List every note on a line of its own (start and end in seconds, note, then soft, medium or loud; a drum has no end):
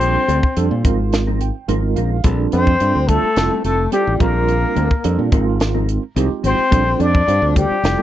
0.00 0.16 A#1 medium
0.00 0.43 G3 medium
0.00 0.43 C4 medium
0.00 0.81 C4 medium
0.00 0.43 D4 medium
0.00 0.43 F4 medium
0.00 0.43 A4 medium
0.00 0.81 C5 loud
0.00 closed hi-hat medium
0.16 muted clean electric guitar stroke soft
0.28 0.40 D2 medium
0.28 0.43 G3 medium
0.28 0.43 C4 medium
0.28 0.43 D4 medium
0.28 0.42 A4 medium
0.28 closed hi-hat medium
0.43 muted clean electric guitar stroke soft
0.43 kick medium
0.57 0.68 F2 medium
0.57 0.85 G3 medium
0.57 0.84 C4 medium
0.57 0.85 D4 medium
0.57 0.84 F4 medium
0.57 0.85 A4 loud
0.57 closed hi-hat medium
0.71 0.82 A#2 medium
0.71 muted clean electric guitar stroke medium
0.84 1.50 G#1 medium
0.84 0.99 F3 medium
0.84 1.54 G#3 medium
0.84 0.99 C4 medium
0.84 1.54 C4 medium
0.84 1.54 D#4 medium
0.84 0.98 D#4 medium
0.84 1.54 F4 medium
0.84 1.54 A#4 medium
0.84 0.98 A#4 medium
0.84 kick loud
0.84 closed hi-hat medium
0.99 muted clean electric guitar stroke medium
1.13 muted clean electric guitar stroke soft
1.13 snare medium
1.13 closed hi-hat medium
1.27 1.40 F3 soft
1.27 1.40 C4 medium
1.27 1.40 D#4 medium
1.27 1.40 A#4 medium
1.41 1.67 G5 medium
1.41 muted clean electric guitar stroke soft
1.41 closed hi-hat medium
1.68 1.94 G#1 medium
1.68 1.83 F3 medium
1.68 2.15 G#3 medium
1.68 2.15 C4 medium
1.68 1.83 C4 medium
1.68 2.15 D#4 medium
1.68 1.82 D#4 medium
1.68 2.15 F4 medium
1.68 2.15 A#4 loud
1.68 1.82 A#4 medium
1.68 1.95 F5 medium
1.68 closed hi-hat medium
1.83 muted clean electric guitar stroke soft
1.96 2.22 A#1 medium
1.96 2.11 F3 medium
1.96 2.11 C4 medium
1.96 2.11 D#4 medium
1.96 2.11 A#4 medium
1.96 2.22 F5 medium
1.96 closed hi-hat soft
2.12 muted clean electric guitar stroke soft
2.24 2.46 A#1 medium
2.24 2.71 G3 medium
2.24 2.39 G3 medium
2.24 2.71 C4 medium
2.24 2.40 C4 medium
2.24 2.71 D4 medium
2.24 2.39 D4 medium
2.24 2.71 F4 medium
2.24 2.71 A4 medium
2.24 2.39 A4 medium
2.24 kick loud
2.24 closed hi-hat medium
2.40 muted clean electric guitar stroke soft
2.52 2.75 F2 loud
2.52 2.67 G3 medium
2.52 3.10 C4 medium
2.52 2.68 C4 medium
2.52 2.67 D4 medium
2.52 2.67 A4 medium
2.52 3.09 C5 loud
2.52 closed hi-hat medium
2.67 kick medium
2.80 2.92 G2 medium
2.80 3.27 G3 medium
2.80 3.27 C4 medium
2.80 3.27 D4 medium
2.80 3.27 F4 medium
2.80 3.27 A4 medium
2.80 closed hi-hat medium
2.95 3.17 D2 medium
2.95 muted clean electric guitar stroke soft
3.08 3.23 G3 medium
3.08 3.64 A3 medium
3.08 3.23 C4 medium
3.08 3.23 D4 medium
3.08 3.64 A4 loud
3.08 3.22 A4 medium
3.08 kick medium
3.08 closed hi-hat medium
3.23 muted fingered electric bass stroke soft
3.36 3.48 F1 medium
3.36 3.83 G3 medium
3.36 3.83 C4 medium
3.36 3.83 E4 medium
3.36 3.83 F4 medium
3.36 3.83 A4 medium
3.36 muted clean electric guitar stroke soft
3.36 snare medium
3.36 closed hi-hat medium
3.51 3.63 G3 medium
3.51 3.63 C4 medium
3.51 3.63 E4 medium
3.51 3.64 A4 medium
3.64 3.86 F1 medium
3.64 3.91 A3 medium
3.64 3.91 A4 medium
3.64 muted clean electric guitar stroke soft
3.64 closed hi-hat medium
3.92 4.07 G3 soft
3.92 4.19 G3 medium
3.92 4.23 G3 medium
3.92 4.06 C4 medium
3.92 4.19 C4 medium
3.92 4.20 E4 medium
3.92 4.06 E4 medium
3.92 4.20 F4 medium
3.92 4.22 G4 medium
3.92 4.21 G4 medium
3.92 4.06 A4 medium
3.92 closed hi-hat medium
4.07 4.18 A1 medium
4.07 muted clean electric guitar stroke soft
4.20 4.64 A#1 medium
4.20 4.90 G3 medium
4.20 4.35 G3 medium
4.20 5.33 A#3 medium
4.20 4.90 C4 medium
4.20 4.35 C4 soft
4.20 4.90 D4 medium
4.20 4.35 D4 medium
4.20 4.90 F4 medium
4.20 4.34 A4 medium
4.20 5.32 A#4 medium
4.20 4.90 A#4 medium
4.20 kick medium
4.20 closed hi-hat soft
4.35 muted clean electric guitar stroke soft
4.48 closed hi-hat medium
4.63 muted clean electric guitar stroke soft
4.75 4.88 D2 medium
4.75 4.90 G3 medium
4.75 4.89 C4 medium
4.75 4.89 D4 medium
4.75 4.89 A4 medium
4.75 closed hi-hat medium
4.90 muted clean electric guitar stroke soft
4.90 kick medium
5.04 5.16 F2 medium
5.04 5.32 G3 medium
5.04 5.31 C4 medium
5.04 5.32 D4 medium
5.04 5.32 F4 medium
5.04 5.33 A4 loud
5.04 closed hi-hat medium
5.19 5.29 A#2 medium
5.19 muted clean electric guitar stroke soft
5.32 5.97 G#1 medium
5.32 5.47 F3 medium
5.32 6.02 G#3 medium
5.32 6.02 C4 medium
5.32 5.46 C4 medium
5.32 6.02 D#4 medium
5.32 5.46 D#4 medium
5.32 6.02 F4 medium
5.32 6.02 A#4 medium
5.32 5.46 A#4 medium
5.32 kick loud
5.32 closed hi-hat medium
5.47 muted clean electric guitar stroke soft
5.60 muted clean electric guitar stroke soft
5.60 snare loud
5.60 closed hi-hat medium
5.75 5.86 F3 medium
5.75 5.87 C4 medium
5.75 5.87 D#4 medium
5.75 5.87 A#4 medium
5.88 muted clean electric guitar stroke soft
5.88 closed hi-hat medium
6.16 6.28 C2 medium
6.16 6.31 F3 medium
6.16 6.62 G#3 medium
6.16 6.30 C4 medium
6.16 6.63 C4 medium
6.16 6.63 D#4 medium
6.16 6.29 D#4 medium
6.16 6.63 F4 medium
6.16 6.63 G4 loud
6.16 6.29 A#4 medium
6.16 closed hi-hat medium
6.30 muted clean electric guitar stroke soft
6.43 6.55 G#1 medium
6.43 6.58 F3 medium
6.43 6.57 C4 medium
6.43 7.03 C4 medium
6.43 6.57 D#4 medium
6.43 6.57 A#4 medium
6.43 7.03 C5 loud
6.43 closed hi-hat medium
6.58 muted clean electric guitar stroke soft
6.58 muted fingered electric bass stroke soft
6.71 6.94 A#1 medium
6.71 7.18 G3 medium
6.71 6.86 G3 medium
6.71 7.18 C4 medium
6.71 6.85 C4 medium
6.71 7.18 D4 medium
6.71 6.85 D4 medium
6.71 7.18 F4 medium
6.71 7.18 A4 medium
6.71 6.85 A4 medium
6.71 kick loud
6.71 closed hi-hat medium
6.86 muted clean electric guitar stroke soft
6.99 7.22 F2 loud
6.99 7.14 G3 medium
6.99 7.13 C4 medium
6.99 7.13 D4 medium
6.99 7.56 D4 medium
6.99 7.13 A4 medium
6.99 7.57 D5 loud
6.99 closed hi-hat medium
7.15 kick medium
7.28 7.39 G2 medium
7.28 7.74 G3 medium
7.28 7.74 C4 medium
7.28 7.75 D4 medium
7.28 7.75 F4 medium
7.28 7.75 C5 medium
7.28 closed hi-hat medium
7.42 7.64 D2 medium
7.42 muted clean electric guitar stroke soft
7.56 7.70 G3 medium
7.56 8.02 G3 medium
7.56 7.70 C4 medium
7.56 7.69 D4 medium
7.56 8.02 G4 medium
7.56 7.69 A4 medium
7.56 kick medium
7.56 closed hi-hat medium
7.70 muted fingered electric bass stroke soft
7.70 muted clean electric guitar stroke soft
7.83 7.95 F1 medium
7.83 8.02 G3 medium
7.83 8.02 C4 medium
7.83 8.02 E4 medium
7.83 8.02 F4 medium
7.83 8.02 A4 medium
7.83 muted clean electric guitar stroke soft
7.83 snare loud
7.83 closed hi-hat medium
7.98 8.02 G3 soft
7.98 8.02 C4 medium
7.98 8.02 E4 medium
7.98 8.02 A4 medium